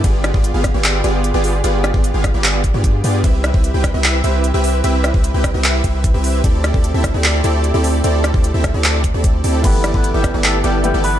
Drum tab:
CC |----------------|----------------|----------------|----------------|
RD |x---------------|x---------------|x---------------|x---------------|
HH |x-x-x-x-x-x-x-o-|x-x-x-x-x-x-x-o-|x-x-x-x-x-x-x-o-|x-x-x-x-x-x-x-o-|
CP |--------x-------|--------x-------|--------x-------|--------x-------|
SD |--r---r---------|--r---r---------|--r---r---------|--r---r---------|
BD |o--o--o---------|---o--o---o-o---|o--o--o---------|---o--o---o-o---|

CC |----------------|----------------|x---------------|
RD |x---------------|x---------------|x---------------|
HH |x-x-x-x-x-x-x-o-|x-x-x-x-x-x-x-o-|x-x-x-x-x-x-x-o-|
CP |--------x-------|--------x-------|--------x-------|
SD |--r---r---------|--r---r---------|--r---r---------|
BD |o--o--o---------|---o--o---o-o---|o--o--o---------|